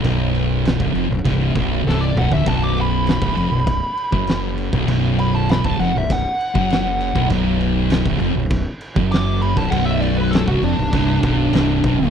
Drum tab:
CC |x-x-x-x-x-x-----|x-x-x-x-x-x-x-x-|x-x-x-x-x-x-x-x-|x-x-x-x-x-x-x-x-|
SD |----o-------o---|----o-------o---|----o-o-----o---|----o-o-----o--o|
T2 |--------------o-|----------------|----------------|----------------|
FT |---------------o|----------------|----------------|----------------|
BD |o----o--o-o-----|o----o--o--o---o|o----o--o--o---o|o----o--o--o---o|

CC |x-x-x-x-x-x-x-x-|
SD |----o-------o--o|
T2 |----------------|
FT |----------------|
BD |o----o--o-o---o-|